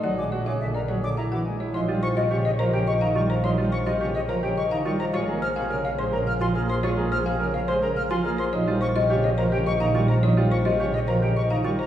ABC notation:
X:1
M:3/4
L:1/16
Q:1/4=106
K:Bbmix
V:1 name="Flute"
z d' z d' =e b z d' b d' z2 | [K:Ebmix] c' z d' e d' e b g d' b d' b | c' z d' e d' e b g d' b d' b | d' z f' z f' f c' b f' c' f' c' |
d' z f' z f' f c' b f' c' f' c' | z2 d' z d' e b g d' b d' b | z2 d' z d' e b g d' b d' b |]
V:2 name="Marimba"
d z ^c =e z d c z e ^f z c | [K:Ebmix] d z c e z d c z e f z c | d z c e z d c z e f z c | d z c f z d c z f a z c |
d z c f z d c z f a z c | d z c e z d c z e f z c | d z c e z d c z e f z c |]
V:3 name="Grand piano"
^F z F A z B A z =E F z E | [K:Ebmix] E F z F G z B G z E F z | E F z F G z B G z E F z | F A z A B z c B z F A z |
F A z A B z c B z F A z | E F z F G z B G z E F z | E F z F G z B G z E F z |]
V:4 name="Pipe organ" clef=bass
^F, A, z ^C, D, z F, D, z =E, A, z | [K:Ebmix] F, G, z C, D, z F, D, z E, G, z | F, G, z C, D, z F, D, z E, G, z | A, B, z C, D, z A, D, z F, B, z |
A, B, z C, D, z A, D, z F, B, z | F, G, z C, D, z F, D, z E, G, z | F, G, z C, D, z F, D, z E, G, z |]
V:5 name="Double bass section" clef=bass
B,,,12 | [K:Ebmix] B,,,12- | B,,,12 | B,,,12- |
B,,,12 | B,,,12- | B,,,12 |]